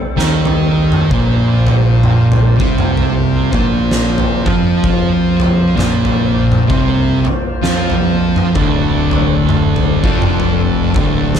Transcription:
Already playing: G3 C4 A4
0.17 D#2 D#3 D#4, snare
0.45 floor tom
0.92 mid tom
1.11 A#1 A#2 A#3 F4 C5, kick, floor tom
1.67 floor tom
2.04 mid tom
2.32 floor tom
2.59 C2 C3 C4, kick
2.78 mid tom
2.97 floor tom
3.53 A#1 A#2 A#3, kick, floor tom
3.91 snare
4.18 floor tom
4.46 F2 F3 F4, kick, mid tom
4.84 kick, floor tom
5.40 floor tom
5.76 A#1 A#2 A#3, snare, mid tom
6.05 floor tom
6.52 mid tom
6.68 C2 C3 C4, kick, floor tom
7.25 floor tom
7.62 F2 F3 F4, snare
7.90 floor tom
8.36 mid tom
8.54 D1 D2 D3 D4 A4 D5, kick, floor tom
9.11 floor tom
9.49 mid tom
9.76 floor tom
10.03 F1 F2 F3, kick
10.22 mid tom
10.40 floor tom
10.94 D1 D2 D3, kick, floor tom
11.35 snare

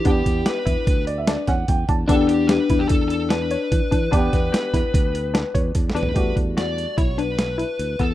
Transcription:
Already playing: E4
0.04 E2 B3 D4 G4, kick, closed hi-hat
0.26 E2, kick, closed hi-hat
0.46 G4 B4, snare, closed hi-hat
0.63 E2 D4 E4
0.67 kick, closed hi-hat
0.87 D2, kick, closed hi-hat
1.07 D5, closed hi-hat
1.18 E5
1.27 D4 D5, snare, closed hi-hat
1.47 E2 C#4 F#5, kick, snare, closed hi-hat
1.68 E2 G5, kick, closed hi-hat
1.89 E2 D4 A5, kick, closed hi-hat
2.08 E2 B3 D4 G4 A4, kick, closed hi-hat
2.28 G4, closed hi-hat
2.47 G4 B4, snare, closed hi-hat
2.70 E2 E4, kick, closed hi-hat
2.79 G4
2.89 E2 A4, kick, closed hi-hat
3.08 A4, closed hi-hat
3.29 D4 B4, snare, closed hi-hat
3.51 C#5, closed hi-hat
3.72 E3, kick, closed hi-hat
3.91 E3 D4, kick, closed hi-hat
4.11 E2 B3 D4 G4, kick, closed hi-hat
4.33 E2, kick, snare, closed hi-hat
4.52 G4, snare, closed hi-hat
4.74 E2 E4, kick, snare, closed hi-hat
4.94 D2, kick, closed hi-hat
5.15 closed hi-hat
5.34 D4, snare, closed hi-hat
5.55 E2 C#5, kick, closed hi-hat
5.75 E2, kick, closed hi-hat
5.90 snare
5.95 E2 D4 B4, closed hi-hat
6.03 floor tom
6.14 E2 G3 A3 D4 F#4 G4, kick, closed hi-hat
6.36 E2, kick, closed hi-hat
6.57 F#4 D5, snare, closed hi-hat
6.78 closed hi-hat
6.98 B1 E4 C#5, kick, closed hi-hat
7.18 D4 B4, closed hi-hat
7.39 snare, closed hi-hat
7.58 E4, closed hi-hat
7.79 D2, closed hi-hat
7.99 E2 B3 A4, kick, closed hi-hat

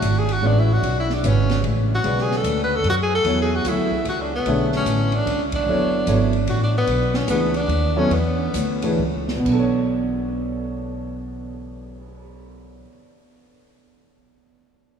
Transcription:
Already playing: A3 D4 F#4 G#4 C#5 E5
0.02 G#1, hi-hat pedal, ride
0.19 G#4
0.29 F#4, ride
0.42 A1 G#3 C#4 F#4 B4 D5
0.46 D4
0.59 E4
0.73 F#4
0.82 B1, ride
1.00 E4
1.10 snare
1.14 D4
1.23 G#1 C#3 G#3 F#4 B4 C#5, hi-hat pedal, ride
1.28 C#4
1.49 snare, ride
1.63 A1, ride
1.95 F#4
2.04 B1 C#3 G#3 F#4 B4 D5, ride
2.18 G#4, snare
2.31 snare
2.37 A4
2.44 D2, hi-hat pedal, ride
2.64 B4
2.76 A4
2.84 F#2, ride
2.90 F#4
3.03 G#4
3.15 A4
3.24 E2 F#3 B3 E4 A4 C#5, ride
3.42 G#4
3.56 F#4
3.65 D2 F#3 B3 E4 A4 E5, hi-hat pedal, ride
3.91 muted upright bass stroke, kick
4.04 C#2, ride
4.09 F#4
4.21 D4
4.35 B3
4.45 B1 D3 A3 G#4 C#5 E5, ride
4.72 snare
4.76 C#4
4.85 A1, hi-hat pedal, ride
5.12 D4, ride
5.26 C#2, ride
5.52 D4, kick, ride
5.67 F#1 F#3 B3 E4 A4 C#5
6.07 G#1 F#3 B3 E4 A4 C#5, hi-hat pedal, ride
6.33 ride
6.47 A1 F#4, ride
6.63 D4
6.78 B3
6.87 B1, ride
7.14 C#4, snare
7.28 C#2 E3 A3 B3 D4 G#4 B4, hi-hat pedal, ride
7.54 D4, ride
7.68 D#2, ride
7.96 F#3 B3 C#4 E4 A4 C#5
8.10 E2 B3, ride
8.54 D2, hi-hat pedal, ride
8.82 E3 A3 D4 G#4 B4, ride
8.98 C#2
9.28 snare
9.34 B2
9.40 B3
9.45 B1 D4, kick, crash
9.53 A4
9.59 C#5
9.76 cymbal swell

